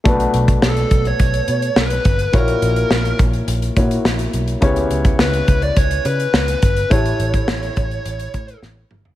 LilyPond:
<<
  \new Staff \with { instrumentName = "Lead electric guitar" } { \time 4/4 \key b \minor \tempo 4 = 105 r4 a'8. cis''4~ cis''16 b'4 | ais'4. r2 r8 | r4 b'8. d''16 cis''8 b'4 b'8 | cis''2. r4 | }
  \new Staff \with { instrumentName = "Grand piano" } { \time 4/4 \key b \minor <a d' fis' b'>1 | <ais e' fis' cis''>2~ <ais e' fis' cis''>8 <ais e' fis' cis''>4. | <b e' g' cis''>1 | <a e' g' cis''>1 | }
  \new Staff \with { instrumentName = "Grand piano" } { \clef bass \time 4/4 \key b \minor b,4. r2 r8 | ais,4. r2 r8 | cis4. r2 r8 | a,4. r2 r8 | }
  \new Staff \with { instrumentName = "Picked electric bass" } { \clef bass \time 4/4 \key b \minor b,,8 b,,8 b,,8 b,,8 b,,8 b,8 b,,8 g,,8 | ais,,8 ais,,8 ais,,8 ais,,8 ais,,8 ais,8 ais,,8 b,,8 | cis,8 cis,8 cis,8 cis,8 cis,8 cis8 cis,8 g,,8 | a,,8 a,,8 a,,8 a,,8 a,,8 a,8 a,,8 g,,8 | }
  \new DrumStaff \with { instrumentName = "Drums" } \drummode { \time 4/4 <hh bd>16 hh16 hh16 <hh bd>16 sn16 hh16 <hh bd>16 hh16 <hh bd>16 hh16 hh16 hh16 sn16 hh16 <hh bd>16 hh16 | <hh bd>16 hh16 hh16 hh16 sn16 hh16 <hh bd>16 hh16 hh16 hh16 <hh bd>16 hh16 sn16 hh16 hh16 hh16 | <hh bd>16 hh16 hh16 <hh bd>16 sn16 hh16 <hh bd>16 hh16 <hh bd>16 hh16 hh16 hh16 sn16 hh16 <hh bd>16 hh16 | <hh bd>16 hh16 hh16 <hh bd>16 sn16 hh16 <hh bd>16 hh16 hh16 hh16 <hh bd>16 hh16 sn8 toml16 tomfh16 | }
>>